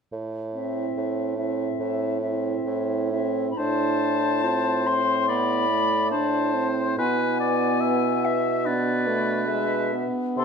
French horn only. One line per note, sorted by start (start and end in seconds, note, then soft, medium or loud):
0.54 1.36 C4 soft
1.38 2.20 C4 soft
2.21 3.10 C4 soft
3.12 3.56 C4 soft
3.57 4.45 D4 soft
4.43 5.30 C4 soft
5.29 5.69 B3 soft
5.69 6.13 A3 soft
6.12 6.56 D4 soft
6.54 6.99 C4 soft
6.97 8.49 B3 soft
8.66 9.08 B3 soft
9.07 9.47 A3 soft
9.48 9.94 G#3 soft
9.92 10.45 B3 soft